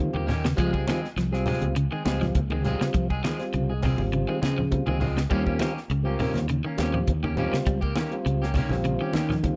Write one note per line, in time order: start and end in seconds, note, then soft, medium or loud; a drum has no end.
0.00 0.33 G3 medium
0.00 0.33 C4 medium
0.00 0.34 F4 medium
0.13 0.53 D#2 medium
0.13 0.31 D#3 medium
0.13 0.26 A#3 soft
0.13 0.27 G4 medium
0.13 muted clean electric guitar stroke medium
0.13 high conga medium
0.27 0.46 D#3 medium
0.27 0.46 A#3 medium
0.27 0.47 C#4 medium
0.27 0.47 G4 medium
0.27 snare soft
0.27 open hi-hat medium
0.27 low conga medium
0.45 0.53 C#3 medium
0.45 snare medium
0.56 0.84 C#2 loud
0.56 0.73 F3 medium
0.56 1.00 G3 medium
0.56 0.73 G#3 medium
0.56 1.01 C4 medium
0.56 1.01 F4 medium
0.56 0.72 G#4 medium
0.56 muted clean electric guitar stroke medium
0.56 kick medium
0.56 closed hi-hat medium
0.56 high conga soft
0.60 0.75 F3 medium
0.73 0.87 G#3 soft
0.73 0.87 C4 medium
0.73 0.87 G#4 medium
0.73 kick medium
0.87 1.04 D#3 medium
0.87 1.06 F3 medium
0.87 1.06 G#3 medium
0.87 1.06 C4 medium
0.87 1.06 G#4 medium
0.87 snare medium
0.87 closed hi-hat soft
0.87 high conga medium
1.05 snare soft
1.16 1.43 C2 medium
1.16 1.33 F3 medium
1.16 snare soft
1.16 closed hi-hat medium
1.16 high conga soft
1.32 1.74 G3 medium
1.32 1.46 G#3 soft
1.32 1.75 C4 medium
1.32 1.46 C4 medium
1.32 1.75 F4 medium
1.32 1.46 G#4 medium
1.32 snare soft
1.46 1.63 C3 medium
1.46 1.65 F3 medium
1.46 1.65 G#3 medium
1.46 1.65 C4 medium
1.46 1.65 G#4 medium
1.46 open hi-hat medium
1.46 low conga medium
1.62 1.88 C#2 medium
1.62 closed hi-hat soft
1.62 high conga medium
1.76 1.84 C#3 medium
1.76 closed hi-hat medium
1.76 high conga soft
1.91 2.08 D#3 medium
1.91 2.04 G#3 soft
1.91 2.04 C4 soft
1.91 2.05 G#4 soft
2.05 2.32 C#2 medium
2.05 2.24 F3 soft
2.05 2.40 G3 medium
2.05 2.24 G#3 medium
2.05 2.24 C4 medium
2.05 2.40 C4 medium
2.05 2.41 F4 medium
2.05 2.24 G#4 medium
2.05 snare medium
2.05 closed hi-hat soft
2.05 high conga medium
2.21 2.37 F3 medium
2.21 snare soft
2.21 low conga medium
2.35 2.75 C#2 medium
2.35 kick medium
2.35 closed hi-hat medium
2.35 high conga medium
2.50 2.67 D#3 medium
2.50 2.64 G#3 soft
2.50 2.64 C4 soft
2.50 2.65 G#4 medium
2.50 high conga medium
2.63 2.83 F3 medium
2.63 3.07 G3 medium
2.63 2.83 G#3 medium
2.63 3.08 C4 medium
2.63 2.84 C4 medium
2.63 3.08 F4 medium
2.63 2.84 G#4 medium
2.63 snare soft
2.63 closed hi-hat soft
2.63 low conga medium
2.81 2.88 C#3 medium
2.81 muted fingered electric bass stroke soft
2.81 snare medium
2.94 3.20 C2 medium
2.94 3.10 F3 medium
2.94 kick medium
2.94 closed hi-hat medium
3.10 3.23 G#3 soft
3.10 3.23 C4 soft
3.10 3.24 G#4 medium
3.10 kick medium
3.24 3.40 D#3 medium
3.24 3.42 F3 soft
3.24 3.43 G#3 medium
3.24 3.43 C4 medium
3.24 3.43 G#4 medium
3.24 snare medium
3.24 closed hi-hat soft
3.24 high conga medium
3.39 3.73 G3 medium
3.39 3.73 C4 medium
3.39 3.74 F4 medium
3.39 snare soft
3.39 closed hi-hat soft
3.53 3.93 C2 loud
3.53 3.69 C#3 medium
3.53 closed hi-hat medium
3.53 high conga soft
3.70 3.84 G#3 soft
3.70 3.82 G#4 medium
3.82 4.00 C3 medium
3.82 4.01 F3 medium
3.82 4.01 C4 medium
3.82 4.01 G#4 medium
3.82 kick medium
3.82 open hi-hat medium
3.82 low conga medium
3.98 4.25 G#1 medium
3.98 4.40 G3 medium
3.98 4.41 C4 medium
3.98 4.41 F4 medium
3.98 high conga medium
4.12 4.21 C#3 medium
4.12 closed hi-hat medium
4.12 high conga soft
4.27 4.44 D#3 medium
4.27 4.41 G#3 soft
4.27 4.41 C4 medium
4.27 4.41 G#4 soft
4.42 4.82 C#3 medium
4.42 4.60 F3 soft
4.42 4.60 G#3 medium
4.42 4.60 C4 medium
4.42 4.61 G#4 medium
4.42 snare medium
4.42 closed hi-hat soft
4.42 high conga medium
4.58 4.73 F3 medium
4.58 low conga medium
4.71 5.06 G3 medium
4.71 5.06 C4 medium
4.71 5.07 F4 medium
4.71 kick medium
4.71 closed hi-hat medium
4.71 high conga medium
4.86 5.25 C#2 medium
4.86 5.03 D#3 medium
4.86 4.99 G#3 soft
4.86 5.00 C4 medium
4.86 5.00 G#4 medium
4.86 high conga medium
5.00 5.19 F3 medium
5.00 5.19 G#3 medium
5.00 5.19 C4 medium
5.00 5.20 G#4 medium
5.00 open hi-hat medium
5.00 low conga medium
5.17 5.25 C#3 medium
5.17 snare medium
5.29 5.57 D#2 medium
5.29 5.46 D#3 medium
5.29 5.73 G3 medium
5.29 5.46 G3 medium
5.29 5.46 A#3 medium
5.29 5.74 C4 medium
5.29 5.45 C#4 medium
5.29 5.74 F4 medium
5.29 5.45 G4 medium
5.29 kick medium
5.29 closed hi-hat medium
5.46 5.59 A#3 soft
5.46 5.60 C#4 medium
5.46 5.60 G4 medium
5.46 kick medium
5.59 5.78 D#3 medium
5.59 5.77 D#3 medium
5.59 5.79 A#3 medium
5.59 5.79 C#4 medium
5.59 5.79 G4 medium
5.59 snare medium
5.59 closed hi-hat soft
5.59 high conga medium
5.77 snare soft
5.90 6.16 C#2 medium
5.90 6.06 C#3 medium
5.90 closed hi-hat medium
5.90 high conga soft
6.03 6.46 G3 medium
6.03 6.19 A#3 soft
6.03 6.47 C4 medium
6.03 6.19 C#4 medium
6.03 6.47 F4 medium
6.03 6.19 G4 medium
6.19 6.35 C3 medium
6.19 6.38 D#3 medium
6.19 6.38 A#3 medium
6.19 6.38 C#4 medium
6.19 6.38 G4 medium
6.19 open hi-hat medium
6.19 low conga medium
6.34 6.61 D#2 medium
6.34 snare soft
6.34 closed hi-hat soft
6.34 high conga medium
6.48 6.57 C#3 medium
6.48 closed hi-hat medium
6.48 high conga soft
6.65 6.80 D#3 medium
6.65 6.79 A#3 soft
6.65 6.79 C#4 soft
6.65 muted clean electric guitar stroke medium
6.77 7.04 D#2 medium
6.77 6.97 D#3 soft
6.77 7.12 G3 medium
6.77 7.12 C4 medium
6.77 6.97 C#4 medium
6.77 7.13 F4 medium
6.77 6.98 G4 medium
6.77 snare medium
6.77 closed hi-hat soft
6.77 high conga medium
6.94 7.09 F3 medium
6.94 low conga medium
7.07 7.47 D#2 medium
7.07 kick medium
7.07 closed hi-hat medium
7.07 high conga medium
7.23 7.39 D#3 medium
7.23 7.36 A#3 soft
7.23 7.37 C#4 medium
7.23 7.37 G4 medium
7.23 high conga medium
7.36 7.56 D#3 medium
7.36 7.80 G3 medium
7.36 7.56 A#3 medium
7.36 7.80 C4 medium
7.36 7.56 C#4 medium
7.36 7.81 F4 medium
7.36 7.56 G4 medium
7.36 closed hi-hat soft
7.36 low conga medium
7.53 7.60 C#3 medium
7.53 muted fingered electric bass stroke soft
7.53 snare medium
7.66 7.93 C#2 medium
7.66 7.82 G3 medium
7.66 kick medium
7.66 closed hi-hat medium
7.66 high conga soft
7.81 7.95 A#3 medium
7.81 7.96 G4 medium
7.81 kick medium
7.96 8.15 D#3 medium
7.96 8.12 D#3 medium
7.96 8.15 A#3 medium
7.96 8.15 C#4 medium
7.96 8.15 G4 medium
7.96 snare medium
7.96 closed hi-hat medium
7.96 high conga medium
8.11 8.46 G3 medium
8.11 8.46 C4 medium
8.11 8.46 F4 medium
8.11 closed hi-hat soft
8.26 8.65 C#2 medium
8.26 8.41 C#3 medium
8.26 closed hi-hat medium
8.26 high conga soft
8.42 8.56 A#3 soft
8.42 8.56 C#4 medium
8.42 8.56 G4 medium
8.42 snare soft
8.54 8.71 C3 medium
8.54 8.74 D#3 medium
8.54 8.75 A#3 medium
8.54 8.75 C#4 medium
8.54 8.75 G4 medium
8.54 kick medium
8.54 open hi-hat medium
8.54 low conga medium
8.69 8.97 A#1 medium
8.69 9.13 G3 medium
8.69 9.13 C4 medium
8.69 9.14 F4 medium
8.69 snare soft
8.69 high conga medium
8.84 8.93 C#3 medium
8.84 closed hi-hat medium
8.84 high conga soft
9.01 9.16 D#3 medium
9.01 9.14 C#4 medium
9.01 9.15 G4 medium
9.13 9.54 D#3 medium
9.13 9.33 D#3 medium
9.13 9.33 A#3 medium
9.13 9.33 C#4 medium
9.13 9.34 G4 medium
9.13 snare medium
9.13 closed hi-hat soft
9.13 high conga medium
9.29 9.46 F3 medium
9.29 snare soft
9.29 low conga medium
9.43 9.56 G3 medium
9.43 9.56 C4 medium
9.43 9.56 F4 medium
9.43 kick medium
9.43 closed hi-hat medium
9.43 high conga medium